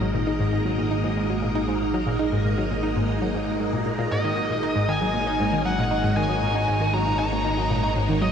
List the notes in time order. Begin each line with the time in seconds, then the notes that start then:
Already playing: G#1 G#3 A#3 D#4 F#4 A#4 D#5 F#5
0.01 F#3
0.14 A#2
0.27 D#4
0.40 G#2
0.53 G#2
0.65 F#3
0.78 A#2
0.91 D#4
1.04 G#2
1.17 G#2
1.30 F#3
1.43 A#2
1.55 D#4
1.68 G#2
1.81 G#2
1.94 F#3
2.07 A#2
2.19 D#4
2.32 G#2
2.45 G#2
2.58 F#3
2.70 A#2
2.83 D#4
2.96 G#2
3.09 G#2
3.22 F#3
3.34 G#2
3.47 G#2
3.60 G#2
3.73 A#2
3.86 A#2
3.99 A#2
4.11 G#1 G#2 D#5
4.24 D#3
4.37 F#3
4.50 A#2
4.63 D#4
4.76 G#2
4.89 D#3 G#5
5.01 F#3 C#5
5.14 A#2
5.27 D#4
5.40 G#2
5.53 D#3
5.65 F#3 F#5
5.78 A#2
5.91 D#4
6.04 G#2
6.17 D#3 G#5
6.29 F#3
6.42 A#2
6.55 D#4
6.68 G#2
6.81 D#3
6.93 F#3 A#5
7.07 A#2
7.19 D#4 A#5
7.32 G#2
7.45 D#3
7.58 F#3
7.70 A#2
7.83 D#4
7.96 G#2
8.09 D#3
8.22 F#3 D#5